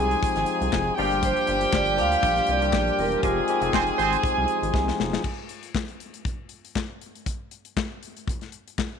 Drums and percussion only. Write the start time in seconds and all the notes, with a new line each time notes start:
0.11 closed hi-hat
0.23 kick, closed hi-hat
0.36 snare, closed hi-hat
0.46 closed hi-hat
0.62 closed hi-hat
0.73 kick, snare, clap
0.98 open hi-hat
1.12 closed hi-hat
1.23 kick, closed hi-hat
1.37 closed hi-hat
1.47 closed hi-hat
1.61 closed hi-hat
1.73 kick, snare, clap
1.86 closed hi-hat
1.98 closed hi-hat
2.12 closed hi-hat
2.23 kick, closed hi-hat
2.36 snare, closed hi-hat
2.47 closed hi-hat
2.62 closed hi-hat
2.73 kick, snare, clap
2.87 closed hi-hat
2.99 open hi-hat
3.12 closed hi-hat
3.23 kick, closed hi-hat
3.48 closed hi-hat
3.62 closed hi-hat
3.73 kick, snare, clap
3.87 closed hi-hat
3.99 closed hi-hat
4.13 closed hi-hat
4.24 kick, closed hi-hat
4.48 closed hi-hat
4.63 closed hi-hat
4.74 kick, snare
4.88 snare
5.00 snare
5.13 snare
5.24 kick, crash
5.49 closed hi-hat
5.63 closed hi-hat
5.75 kick, snare, clap
5.88 closed hi-hat
6.00 closed hi-hat
6.14 closed hi-hat
6.25 kick, closed hi-hat
6.49 closed hi-hat
6.65 closed hi-hat
6.76 kick, snare, clap
7.01 closed hi-hat
7.15 closed hi-hat
7.26 kick, closed hi-hat
7.51 closed hi-hat
7.65 closed hi-hat
7.77 kick, snare, clap
8.03 closed hi-hat
8.17 closed hi-hat
8.28 kick, closed hi-hat
8.41 snare, closed hi-hat
8.52 closed hi-hat
8.68 closed hi-hat
8.78 kick, snare, clap